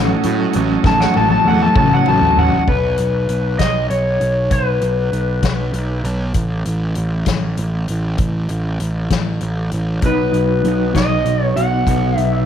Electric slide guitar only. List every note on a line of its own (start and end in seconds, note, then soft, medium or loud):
0.00 0.10 F#5 loud
0.87 1.01 A5 medium
1.00 1.15 F#5 medium
1.17 1.30 A5 loud
1.31 1.46 A5 loud
1.48 1.62 F#5 loud
1.62 1.77 A5 loud
1.78 1.92 A5 loud
1.94 2.08 F#5 loud
2.08 2.37 A5 medium
2.39 2.68 F#5 medium
2.69 3.63 B4 medium
3.59 3.90 D#5 loud
3.90 4.53 C#5 medium
4.52 6.01 B4 medium
10.06 10.99 B4 medium
10.96 11.44 D#5 medium
11.44 11.59 C#5 medium
11.56 12.18 F#5 medium
12.18 12.44 E5 medium